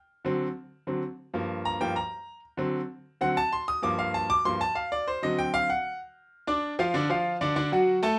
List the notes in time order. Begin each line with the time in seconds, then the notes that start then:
0.25 D3 F#3 C4
0.87 D3 F#3 C4
1.34 G2 F3 A#3
1.65 A#5
1.80 G2 F3 A#3 G5
1.96 A#5
2.57 D3 F#3 C4
3.21 D3 F#3 C4 F#5
3.37 A5
3.52 C6
3.68 D#6
3.82 G2 F3 A#3 D6
3.99 F5
4.14 A5
4.30 D6
4.45 G2 F3 A#3 C6
4.61 A5
4.75 F5
4.92 D5
5.08 C5
5.22 D3 F#3 C4 D#5
5.39 G5
5.54 F5
5.70 F#5
6.47 D4 D5 D6
6.79 F3 F4 F5
6.94 D3 D4 D5
7.10 F3 F4 F5
7.41 D3 D4 D5
7.56 D3 D4 D5
7.72 F#3 F#4 F#5
8.03 A3 A4 A5